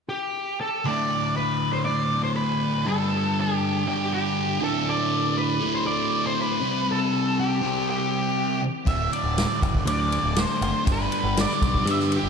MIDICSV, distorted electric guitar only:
0, 0, Header, 1, 2, 480
1, 0, Start_track
1, 0, Tempo, 500417
1, 819, Time_signature, 4, 2, 24, 8
1, 11792, End_track
2, 0, Start_track
2, 0, Title_t, "Distorted electric guitar"
2, 0, Program_c, 0, 30
2, 808, Note_on_c, 0, 38, 79
2, 829, Note_on_c, 0, 45, 91
2, 841, Note_on_c, 0, 50, 101
2, 1762, Note_off_c, 0, 38, 0
2, 1773, Note_off_c, 0, 45, 0
2, 1773, Note_on_c, 0, 38, 70
2, 1779, Note_off_c, 0, 50, 0
2, 1794, Note_on_c, 0, 45, 73
2, 1806, Note_on_c, 0, 50, 77
2, 2726, Note_off_c, 0, 38, 0
2, 2736, Note_off_c, 0, 45, 0
2, 2738, Note_on_c, 0, 43, 82
2, 2742, Note_off_c, 0, 50, 0
2, 2752, Note_on_c, 0, 50, 97
2, 2772, Note_on_c, 0, 55, 101
2, 3683, Note_off_c, 0, 43, 0
2, 3694, Note_on_c, 0, 43, 72
2, 3696, Note_off_c, 0, 50, 0
2, 3706, Note_off_c, 0, 55, 0
2, 3714, Note_on_c, 0, 50, 68
2, 3727, Note_on_c, 0, 55, 70
2, 4405, Note_off_c, 0, 43, 0
2, 4409, Note_on_c, 0, 38, 83
2, 4417, Note_off_c, 0, 50, 0
2, 4423, Note_off_c, 0, 55, 0
2, 4432, Note_on_c, 0, 45, 86
2, 4441, Note_on_c, 0, 50, 99
2, 5364, Note_off_c, 0, 50, 0
2, 5365, Note_off_c, 0, 38, 0
2, 5375, Note_on_c, 0, 50, 79
2, 5376, Note_off_c, 0, 45, 0
2, 5395, Note_on_c, 0, 45, 81
2, 5414, Note_on_c, 0, 38, 73
2, 6327, Note_off_c, 0, 50, 0
2, 6333, Note_off_c, 0, 38, 0
2, 6337, Note_off_c, 0, 45, 0
2, 6337, Note_on_c, 0, 48, 83
2, 6355, Note_on_c, 0, 55, 91
2, 6372, Note_on_c, 0, 60, 96
2, 7287, Note_off_c, 0, 48, 0
2, 7290, Note_off_c, 0, 60, 0
2, 7296, Note_off_c, 0, 55, 0
2, 7301, Note_on_c, 0, 60, 76
2, 7326, Note_on_c, 0, 55, 73
2, 7340, Note_on_c, 0, 48, 64
2, 8248, Note_off_c, 0, 60, 0
2, 8260, Note_off_c, 0, 55, 0
2, 8268, Note_off_c, 0, 48, 0
2, 8490, Note_on_c, 0, 38, 92
2, 8512, Note_on_c, 0, 45, 91
2, 8527, Note_on_c, 0, 50, 95
2, 9441, Note_off_c, 0, 38, 0
2, 9452, Note_off_c, 0, 45, 0
2, 9455, Note_on_c, 0, 38, 62
2, 9459, Note_off_c, 0, 50, 0
2, 9474, Note_on_c, 0, 45, 72
2, 9495, Note_on_c, 0, 50, 76
2, 10396, Note_off_c, 0, 38, 0
2, 10400, Note_on_c, 0, 43, 91
2, 10411, Note_off_c, 0, 45, 0
2, 10412, Note_off_c, 0, 50, 0
2, 10424, Note_on_c, 0, 50, 90
2, 10436, Note_on_c, 0, 55, 100
2, 11352, Note_off_c, 0, 43, 0
2, 11364, Note_off_c, 0, 50, 0
2, 11366, Note_on_c, 0, 43, 62
2, 11370, Note_off_c, 0, 55, 0
2, 11384, Note_on_c, 0, 50, 74
2, 11407, Note_on_c, 0, 55, 74
2, 11792, Note_off_c, 0, 43, 0
2, 11792, Note_off_c, 0, 50, 0
2, 11792, Note_off_c, 0, 55, 0
2, 11792, End_track
0, 0, End_of_file